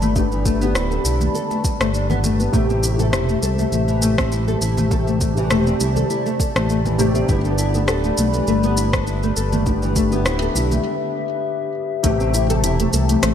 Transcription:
Already playing: analog synth bass G1, felt piano D3 B3 G4, ambient pad G4 B4 D5 B5
0.02 nylon-string guitar A3, high conga, low conga, shaker
0.15 felt piano D3 B3 G4, nylon-string guitar A3, kick, shaker
0.32 nylon-string guitar E3, shaker
0.45 nylon-string guitar A3, kick, shaker
0.60 felt piano D3 B3 G4, nylon-string guitar B3, shaker
0.75 analog synth bass D1, nylon-string guitar E4, cross-stick, shaker
0.91 nylon-string guitar A4, shaker
1.05 analog synth bass B1, nylon-string guitar E4, muted conga, shaker
1.21 nylon-string guitar A3, high conga, low conga, shaker
1.35 nylon-string guitar A4, shaker
1.50 nylon-string guitar A3, muted conga, shaker
1.64 nylon-string guitar G3, kick, shaker
1.80 analog synth bass G1, nylon-string guitar A3, cross-stick, muted conga, shaker
1.94 nylon-string guitar D4, shaker
2.10 nylon-string guitar B3, high conga, low conga, shaker
2.24 nylon-string guitar A3, muted conga, low conga, shaker
2.40 nylon-string guitar B3, high conga, shaker
2.52 analog synth bass A1, felt piano C3 A3 G4, nylon-string guitar A3, ambient pad C5 E5 A5, kick, shaker
2.70 nylon-string guitar C4, shaker
2.83 nylon-string guitar E4, shaker
2.97 felt piano C3 A3, nylon-string guitar A4, shaker
3.01 felt piano G4
3.13 analog synth bass E1, nylon-string guitar E4, cross-stick, shaker
3.29 nylon-string guitar A3, shaker
3.42 analog synth bass C2, nylon-string guitar A4, muted conga, shaker
3.59 nylon-string guitar A3, muted conga, high conga, shaker
3.72 analog synth bass A1, nylon-string guitar A3, shaker
3.88 nylon-string guitar E3, muted conga, shaker
4.02 nylon-string guitar A3, shaker
4.18 nylon-string guitar C4, kick, cross-stick, high conga, shaker
4.32 nylon-string guitar E4, shaker
4.48 nylon-string guitar A4, muted conga, high conga, shaker
4.61 analog synth bass A1, nylon-string guitar E4, shaker
4.77 nylon-string guitar A3, high conga, low conga, shaker
4.90 felt piano C3 A3 G4, nylon-string guitar A4, ambient pad D5, kick, shaker
5.07 nylon-string guitar A3, shaker
5.21 nylon-string guitar A3, kick, shaker
5.35 felt piano C3 A3, nylon-string guitar E3, shaker
5.39 felt piano G4
5.51 analog synth bass E1, nylon-string guitar A3, cross-stick, shaker
5.67 nylon-string guitar C4, shaker
5.80 analog synth bass C2, nylon-string guitar E4, muted conga, shaker
5.96 nylon-string guitar A4, high conga, low conga, shaker
6.10 nylon-string guitar E4, shaker
6.26 nylon-string guitar A3, muted conga, shaker
6.40 nylon-string guitar A4, kick, shaker
6.56 analog synth bass A1, nylon-string guitar A3, cross-stick, muted conga, shaker
6.69 nylon-string guitar A3, shaker
6.85 nylon-string guitar E3, high conga, low conga, shaker
6.98 felt piano C3 A3 G4, nylon-string guitar A3, muted conga, low conga, shaker
7.15 nylon-string guitar C4, high conga, shaker
7.28 analog synth bass G1, felt piano D3 B3 G4, nylon-string guitar E4, ambient pad B4 B5, kick, shaker
7.44 nylon-string guitar A4, shaker
7.58 nylon-string guitar E4, shaker
7.72 felt piano D3 B3, nylon-string guitar A3, shaker
7.77 felt piano G4
7.88 analog synth bass D1, nylon-string guitar A4, cross-stick, shaker
8.04 nylon-string guitar A3, shaker
8.18 analog synth bass B1, nylon-string guitar A3, muted conga, shaker
8.33 nylon-string guitar E3, muted conga, high conga, shaker
8.47 analog synth bass G1, nylon-string guitar A3, shaker
8.63 nylon-string guitar B3, muted conga, shaker
8.77 nylon-string guitar E4, shaker
8.93 nylon-string guitar A4, kick, cross-stick, high conga, shaker
9.07 nylon-string guitar E4, shaker
9.23 nylon-string guitar A3, muted conga, high conga, shaker
9.36 analog synth bass G1, nylon-string guitar A4, shaker
9.52 nylon-string guitar A3, high conga, low conga, shaker
9.66 felt piano D3 B3 G4, nylon-string guitar A3, ambient pad E5, kick, shaker
9.82 nylon-string guitar E3, shaker
9.96 nylon-string guitar A3, kick, shaker
10.10 felt piano D3 B3, nylon-string guitar B3, shaker
10.14 felt piano G4
10.25 analog synth bass D1, nylon-string guitar E4, cross-stick, shaker
10.42 nylon-string guitar A4, shaker
10.55 analog synth bass B1, nylon-string guitar E4, muted conga, shaker
10.71 nylon-string guitar A3, muted conga, high conga, low conga, shaker
12.03 analog synth bass A1, felt piano C3 A3 G4, ambient pad E3 A3 C4 G4, nylon-string guitar A3, kick, closed hi-hat, shaker
12.20 nylon-string guitar C4, shaker
12.34 nylon-string guitar E4, shaker
12.48 felt piano C3 A3, nylon-string guitar A4, closed hi-hat, high conga, shaker
12.52 felt piano G4
12.63 analog synth bass E1, nylon-string guitar E4, closed hi-hat, shaker
12.79 nylon-string guitar A3, closed hi-hat, high conga, shaker
12.93 analog synth bass C2, nylon-string guitar A4, muted conga, shaker
13.09 nylon-string guitar A3, closed hi-hat, muted conga, shaker
13.23 analog synth bass A1, nylon-string guitar A3, cross-stick, closed hi-hat, shaker

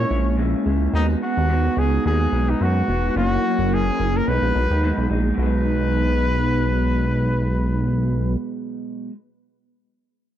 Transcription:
Already playing: clean electric guitar A#2 G#3 C#4, analog synth pad G#3 A#3 C#4, trumpet C#5
0.10 analog synth bass A#1, clean electric guitar G#3 C#4 E4
0.37 clean electric guitar A#2 G#3 C#4 E4
0.66 analog synth bass C#2, clean electric guitar G#3 C#4 E4
0.93 analog synth bass D#2, clean electric guitar D#3 G#3 B3 F#4, analog synth pad B3 D#4, trumpet D#4
1.21 clean electric guitar G#3 B3 F#4, trumpet F#4
1.37 analog synth bass D#2
1.49 clean electric guitar D#3 G#3 B3 F#4
1.77 analog synth bass C#2, clean electric guitar G#3 B3 F#4, trumpet G#4
2.03 analog synth bass D#2, clean electric guitar D#3 G#3 B3 F#4, trumpet G#4
2.32 analog synth bass B1, clean electric guitar G#3 B3 F#4
2.50 trumpet D#4
2.60 analog synth bass F#2, clean electric guitar D#3 G#3 B3 F#4, trumpet F#4
2.88 analog synth bass E1, clean electric guitar G#3 B3 F#4
3.14 analog synth bass F#1, clean electric guitar F#2 E3 A#3 C#4, analog synth pad F#3 E4 A#4, trumpet F#4
3.43 clean electric guitar E3 A#3 C#4
3.59 analog synth bass F#1
3.72 clean electric guitar F#2 E3 A#3 C#4, trumpet G#4
4.00 analog synth bass F#1, clean electric guitar E3 A#3 C#4
4.16 trumpet A#4
4.26 analog synth bass B1, clean electric guitar B2 F#3 G#3, analog synth pad G#3 B3 D#4, trumpet B4
4.31 clean electric guitar D#4
4.42 analog synth bass A#1
4.54 analog synth bass B1, clean electric guitar F#3 G#3 D#4
4.71 analog synth bass D#2
4.83 clean electric guitar B2 F#3 G#3 D#4
4.98 analog synth bass B1
5.10 analog synth bass A#1, clean electric guitar F#3 G#3 D#4
5.34 analog synth bass B1, clean electric guitar B2, analog synth pad B2 G#3 D#4
5.39 clean electric guitar F#3, trumpet B4
5.43 clean electric guitar G#3 D#4

